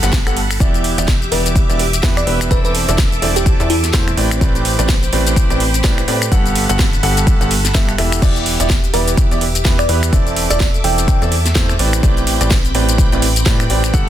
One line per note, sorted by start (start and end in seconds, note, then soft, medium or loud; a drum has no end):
0.00 0.24 G1 loud
0.00 0.14 G2 medium
0.00 0.14 B3 medium
0.00 0.14 G4 medium
0.00 0.58 A4 medium
0.00 0.14 A4 medium
0.00 0.58 F#5 medium
0.00 0.14 F#5 medium
0.00 0.56 B5 medium
0.00 snare soft
0.00 closed hi-hat soft
0.00 shaker medium
0.13 kick loud
0.13 snare loud
0.13 closed hi-hat medium
0.13 shaker medium
0.27 0.58 G1 loud
0.27 0.38 G2 medium
0.27 0.38 B3 medium
0.27 0.38 G4 medium
0.27 0.38 A4 medium
0.27 0.38 F#5 medium
0.27 finger snap medium
0.27 closed hi-hat soft
0.27 shaker soft
0.37 open hi-hat loud
0.51 finger snap medium
0.51 open hi-hat medium
0.51 shaker medium
0.60 0.95 E1 loud
0.60 0.95 E3 medium
0.60 0.95 B3 medium
0.60 0.95 E4 medium
0.60 2.49 G4 medium
0.60 0.95 G4 medium
0.60 0.95 D5 loud
0.60 4.14 E5 medium
0.60 2.49 D6 medium
0.60 kick loud
0.60 closed hi-hat medium
0.60 shaker medium
0.74 closed hi-hat soft
0.74 shaker soft
0.84 open hi-hat loud
0.98 1.30 E1 loud
0.98 1.09 E3 loud
0.98 1.09 B3 medium
0.98 1.09 E4 medium
0.98 1.09 G4 medium
0.98 1.09 D5 loud
0.98 closed hi-hat medium
0.98 shaker medium
1.08 kick loud
1.08 snare loud
1.08 closed hi-hat medium
1.08 shaker medium
1.22 closed hi-hat soft
1.22 shaker soft
1.32 1.67 E1 loud
1.32 1.66 E3 medium
1.32 1.66 B3 medium
1.32 1.66 E4 medium
1.32 1.66 G4 medium
1.32 1.51 B4 medium
1.32 1.66 D5 medium
1.32 open hi-hat loud
1.46 closed hi-hat soft
1.46 shaker medium
1.56 kick loud
1.56 closed hi-hat medium
1.56 shaker medium
1.69 2.01 E1 loud
1.69 1.81 E3 medium
1.69 1.81 B3 medium
1.69 1.81 E4 medium
1.69 1.81 G4 medium
1.69 1.81 D5 medium
1.69 closed hi-hat soft
1.69 shaker soft
1.79 open hi-hat loud
1.93 closed hi-hat medium
1.93 shaker medium
2.03 2.25 E2 medium
2.03 2.18 E3 medium
2.03 2.18 B3 medium
2.03 2.18 E4 medium
2.03 2.18 G4 medium
2.03 2.18 B4 loud
2.03 kick loud
2.03 snare loud
2.03 closed hi-hat soft
2.03 shaker medium
2.17 2.34 D5 medium
2.17 finger snap medium
2.17 closed hi-hat soft
2.17 shaker soft
2.27 2.49 E1 loud
2.27 2.48 B3 medium
2.27 2.48 E4 medium
2.27 2.48 G4 medium
2.27 2.48 B4 medium
2.27 open hi-hat loud
2.41 finger snap medium
2.41 closed hi-hat soft
2.41 shaker medium
2.51 2.86 E1 loud
2.51 2.85 E3 medium
2.51 2.85 C4 medium
2.51 2.85 E4 medium
2.51 2.85 A4 medium
2.51 4.16 A4 medium
2.51 2.60 B4 medium
2.51 2.85 D5 loud
2.51 6.28 D6 medium
2.51 kick loud
2.51 closed hi-hat medium
2.51 shaker medium
2.65 2.71 B4 medium
2.65 closed hi-hat soft
2.65 shaker soft
2.75 open hi-hat loud
2.88 3.20 E1 loud
2.88 3.00 E3 loud
2.88 3.00 C4 medium
2.88 3.00 E4 medium
2.88 3.00 A4 medium
2.88 3.00 D5 loud
2.88 closed hi-hat medium
2.88 shaker medium
2.98 kick loud
2.98 snare loud
2.98 closed hi-hat medium
2.98 shaker medium
3.12 closed hi-hat soft
3.12 shaker soft
3.22 3.57 E1 loud
3.22 3.57 E3 medium
3.22 3.57 C4 medium
3.22 3.57 E4 medium
3.22 3.57 A4 medium
3.22 3.57 D5 loud
3.22 open hi-hat loud
3.36 3.53 G4 medium
3.36 closed hi-hat medium
3.36 shaker medium
3.46 kick loud
3.46 closed hi-hat medium
3.46 shaker medium
3.60 3.92 E2 loud
3.60 3.71 E3 medium
3.60 3.71 C4 medium
3.60 3.71 E4 medium
3.60 3.71 A4 medium
3.60 3.71 D5 medium
3.60 closed hi-hat soft
3.60 shaker soft
3.70 4.23 E4 medium
3.70 open hi-hat loud
3.84 snare soft
3.84 closed hi-hat medium
3.84 shaker medium
3.93 4.15 E2 loud
3.93 4.08 A2 loud
3.93 4.08 C4 medium
3.93 4.08 E4 medium
3.93 4.08 A4 medium
3.93 4.08 C5 loud
3.93 kick loud
3.93 snare loud
3.93 closed hi-hat medium
3.93 shaker medium
4.08 finger snap medium
4.08 closed hi-hat soft
4.08 shaker soft
4.17 4.39 A1 loud
4.17 4.39 A2 medium
4.17 6.29 C4 medium
4.17 4.39 C4 medium
4.17 4.39 G4 medium
4.17 4.39 B4 medium
4.17 4.39 D5 medium
4.17 6.29 G5 medium
4.17 8.18 B5 medium
4.17 open hi-hat loud
4.31 finger snap medium
4.31 shaker medium
4.41 4.76 A1 loud
4.41 4.76 A2 medium
4.41 4.76 C4 medium
4.41 4.76 G4 medium
4.41 4.76 B4 medium
4.41 4.76 D5 loud
4.41 kick loud
4.41 closed hi-hat medium
4.41 shaker medium
4.55 closed hi-hat soft
4.55 shaker soft
4.65 open hi-hat loud
4.79 5.11 A1 loud
4.79 4.90 A2 loud
4.79 4.90 C4 medium
4.79 4.90 G4 medium
4.79 4.90 B4 medium
4.79 4.90 D5 loud
4.79 closed hi-hat medium
4.79 shaker medium
4.89 kick loud
4.89 snare loud
4.89 closed hi-hat medium
4.89 shaker medium
5.03 closed hi-hat soft
5.03 shaker soft
5.13 5.48 A1 medium
5.13 5.47 A2 medium
5.13 5.47 C4 medium
5.13 5.47 G4 medium
5.13 5.47 B4 medium
5.13 5.47 D5 medium
5.13 open hi-hat loud
5.27 closed hi-hat medium
5.27 shaker medium
5.36 kick loud
5.36 closed hi-hat medium
5.36 shaker medium
5.50 5.82 A1 loud
5.50 5.61 A2 medium
5.50 5.61 C4 medium
5.50 5.61 G4 medium
5.50 5.61 B4 medium
5.50 5.61 D5 medium
5.50 closed hi-hat soft
5.50 shaker soft
5.60 open hi-hat loud
5.74 closed hi-hat medium
5.74 shaker medium
5.84 5.99 A2 medium
5.84 5.99 C4 medium
5.84 5.99 G4 medium
5.84 5.99 B4 medium
5.84 5.99 D5 loud
5.84 kick loud
5.84 snare loud
5.84 closed hi-hat medium
5.84 shaker medium
5.98 finger snap medium
5.98 closed hi-hat soft
5.98 shaker soft
6.08 6.30 A2 loud
6.08 6.29 C4 medium
6.08 6.29 G4 medium
6.08 6.29 B4 medium
6.08 6.29 D5 medium
6.08 open hi-hat loud
6.22 finger snap medium
6.22 closed hi-hat medium
6.22 shaker medium
6.32 6.67 G1 loud
6.32 6.66 G2 medium
6.32 6.66 B3 medium
6.32 6.66 G4 medium
6.32 8.20 A4 medium
6.32 6.66 A4 medium
6.32 8.20 F#5 medium
6.32 6.66 F#5 loud
6.32 kick loud
6.32 closed hi-hat medium
6.32 shaker medium
6.46 closed hi-hat soft
6.46 shaker soft
6.55 open hi-hat loud
6.69 7.01 G1 medium
6.69 6.80 G2 loud
6.69 6.80 B3 medium
6.69 6.80 G4 medium
6.69 6.80 A4 medium
6.69 6.80 F#5 loud
6.69 closed hi-hat medium
6.69 shaker medium
6.79 kick loud
6.79 snare loud
6.79 closed hi-hat medium
6.79 shaker medium
6.93 closed hi-hat soft
6.93 shaker soft
7.03 7.38 G1 loud
7.03 7.38 G2 medium
7.03 7.38 B3 medium
7.03 7.38 G4 medium
7.03 7.38 A4 medium
7.03 7.37 F#5 loud
7.03 open hi-hat loud
7.17 closed hi-hat medium
7.17 shaker medium
7.27 kick loud
7.27 closed hi-hat medium
7.27 shaker medium
7.41 7.73 G1 loud
7.41 7.52 G2 medium
7.41 7.52 B3 medium
7.41 7.52 G4 medium
7.41 7.52 A4 medium
7.41 7.52 F#5 medium
7.41 closed hi-hat soft
7.41 shaker soft
7.51 open hi-hat loud
7.65 snare soft
7.65 closed hi-hat medium
7.65 shaker medium
7.74 7.96 G1 loud
7.74 7.89 G2 loud
7.74 7.89 B3 medium
7.74 7.89 G4 medium
7.74 7.89 A4 medium
7.74 7.89 E5 loud
7.74 kick loud
7.74 snare loud
7.74 closed hi-hat medium
7.74 shaker medium
7.89 finger snap medium
7.89 closed hi-hat soft
7.89 shaker soft
7.98 8.20 E1 loud
7.98 8.20 E3 medium
7.98 8.20 B3 medium
7.98 8.20 G4 medium
7.98 8.20 A4 medium
7.98 8.20 E5 medium
7.98 finger snap medium
7.98 open hi-hat loud
8.12 finger snap medium
8.12 open hi-hat medium
8.12 shaker medium
8.22 8.57 E1 loud
8.22 8.57 E3 medium
8.22 8.57 B3 medium
8.22 8.57 E4 medium
8.22 10.11 G4 medium
8.22 8.57 G4 medium
8.22 8.57 D5 loud
8.22 11.76 E5 medium
8.22 13.90 D6 medium
8.22 kick loud
8.22 closed hi-hat medium
8.22 crash medium
8.22 shaker medium
8.36 closed hi-hat soft
8.36 shaker soft
8.46 open hi-hat loud
8.60 8.92 E1 loud
8.60 8.71 E3 loud
8.60 8.71 B3 medium
8.60 8.71 E4 medium
8.60 8.71 G4 medium
8.60 8.71 D5 loud
8.60 closed hi-hat medium
8.60 shaker medium
8.70 kick loud
8.70 snare loud
8.70 closed hi-hat medium
8.70 shaker medium
8.84 closed hi-hat soft
8.84 shaker soft
8.94 9.29 E1 medium
8.94 9.28 E3 medium
8.94 9.28 B3 medium
8.94 9.28 E4 medium
8.94 9.28 G4 medium
8.94 9.12 B4 medium
8.94 9.28 D5 loud
8.94 open hi-hat loud
9.08 closed hi-hat medium
9.08 shaker medium
9.17 kick loud
9.17 closed hi-hat medium
9.17 shaker medium
9.31 9.63 E1 loud
9.31 9.42 E3 medium
9.31 9.42 B3 medium
9.31 9.42 E4 medium
9.31 9.42 G4 medium
9.31 9.42 D5 medium
9.31 closed hi-hat soft
9.31 shaker soft
9.41 open hi-hat loud
9.55 closed hi-hat medium
9.55 shaker medium
9.65 9.87 E2 medium
9.65 9.80 E3 medium
9.65 9.80 B3 medium
9.65 9.80 E4 medium
9.65 9.80 G4 medium
9.65 9.80 B4 loud
9.65 kick loud
9.65 snare loud
9.65 closed hi-hat medium
9.65 shaker medium
9.79 9.96 D5 loud
9.79 finger snap medium
9.79 closed hi-hat soft
9.79 shaker soft
9.89 10.11 E2 loud
9.89 10.10 B3 medium
9.89 10.10 E4 medium
9.89 10.10 G4 medium
9.89 10.10 B4 medium
9.89 open hi-hat loud
10.03 finger snap medium
10.03 closed hi-hat medium
10.03 shaker medium
10.13 10.48 E1 loud
10.13 10.47 E3 medium
10.13 10.47 C4 medium
10.13 10.47 E4 medium
10.13 11.78 A4 medium
10.13 10.47 A4 medium
10.13 10.47 D5 loud
10.13 kick loud
10.13 closed hi-hat medium
10.13 shaker medium
10.27 closed hi-hat soft
10.27 shaker soft
10.36 open hi-hat loud
10.50 10.82 E1 loud
10.50 10.61 E3 loud
10.50 10.61 C4 medium
10.50 10.62 E4 medium
10.50 10.61 A4 medium
10.50 10.67 D5 loud
10.50 10.62 D5 loud
10.50 closed hi-hat medium
10.50 shaker medium
10.60 kick loud
10.60 snare loud
10.60 closed hi-hat medium
10.60 shaker medium
10.74 closed hi-hat soft
10.74 shaker soft
10.84 11.19 E1 loud
10.84 11.19 E3 medium
10.84 11.19 C4 medium
10.84 11.19 E4 medium
10.84 11.19 A4 medium
10.84 11.19 D5 loud
10.84 11.22 G5 medium
10.84 open hi-hat loud
10.98 closed hi-hat medium
10.98 shaker medium
11.08 kick loud
11.08 closed hi-hat medium
11.08 shaker medium
11.22 11.54 E2 loud
11.22 11.33 E3 medium
11.22 11.33 C4 medium
11.22 11.33 E4 medium
11.22 11.33 A4 medium
11.22 11.33 D5 medium
11.22 closed hi-hat soft
11.22 shaker soft
11.32 open hi-hat loud
11.45 snare soft
11.45 closed hi-hat medium
11.45 shaker medium
11.55 11.77 E2 medium
11.55 11.70 A2 medium
11.55 11.70 C4 medium
11.55 11.70 E4 medium
11.55 11.70 A4 medium
11.55 11.70 C5 loud
11.55 kick loud
11.55 snare loud
11.55 closed hi-hat medium
11.55 shaker medium
11.69 finger snap medium
11.69 closed hi-hat soft
11.69 shaker soft
11.79 12.01 A1 loud
11.79 12.01 A2 medium
11.79 13.91 C4 medium
11.79 12.01 C4 medium
11.79 12.01 G4 medium
11.79 12.01 B4 medium
11.79 12.01 D5 medium
11.79 13.92 G5 medium
11.79 14.09 B5 medium
11.79 open hi-hat loud
11.93 finger snap medium
11.93 closed hi-hat medium
11.93 shaker medium
12.03 12.38 A1 loud
12.03 12.38 A2 medium
12.03 12.38 C4 medium
12.03 12.38 G4 medium
12.03 12.38 B4 medium
12.03 12.38 D5 loud
12.03 kick loud
12.03 closed hi-hat medium
12.03 shaker medium
12.17 closed hi-hat soft
12.17 shaker soft
12.27 open hi-hat loud
12.41 12.73 A1 loud
12.41 12.52 A2 loud
12.41 12.52 C4 medium
12.41 12.52 G4 medium
12.41 12.52 B4 medium
12.41 12.52 D5 loud
12.41 closed hi-hat medium
12.41 shaker medium
12.51 kick loud
12.51 snare loud
12.51 closed hi-hat soft
12.51 shaker medium
12.65 closed hi-hat soft
12.65 shaker soft
12.75 13.10 A1 loud
12.75 13.09 A2 medium
12.75 13.09 C4 medium
12.75 13.09 G4 medium
12.75 13.09 B4 medium
12.75 13.09 D5 loud
12.75 open hi-hat loud
12.89 closed hi-hat medium
12.89 shaker medium
12.98 kick loud
12.98 closed hi-hat medium
12.98 shaker medium
13.12 13.44 A1 loud
13.12 13.23 A2 medium
13.12 13.23 C4 medium
13.12 13.23 G4 medium
13.12 13.23 B4 medium
13.12 13.23 D5 medium
13.12 closed hi-hat soft
13.12 shaker soft
13.22 open hi-hat loud
13.36 closed hi-hat medium
13.36 shaker medium
13.46 13.61 A2 medium
13.46 13.68 A2 loud
13.46 13.61 C4 medium
13.46 13.61 G4 medium
13.46 13.61 B4 medium
13.46 13.61 D5 loud
13.46 kick loud
13.46 snare loud
13.46 closed hi-hat medium
13.46 shaker medium
13.60 finger snap medium
13.60 closed hi-hat soft
13.60 shaker soft
13.70 13.92 A1 loud
13.70 13.91 C4 medium
13.70 13.91 G4 medium
13.70 13.91 B4 medium
13.70 13.91 D5 medium
13.70 open hi-hat loud
13.84 finger snap medium
13.84 closed hi-hat medium
13.84 shaker medium
13.94 14.09 G1 loud
13.94 14.09 G2 medium
13.94 14.09 B3 medium
13.94 14.09 G4 medium
13.94 14.09 A4 medium
13.94 14.09 F#5 loud
13.94 14.09 F#5 medium
13.94 kick loud
13.94 closed hi-hat medium
13.94 shaker medium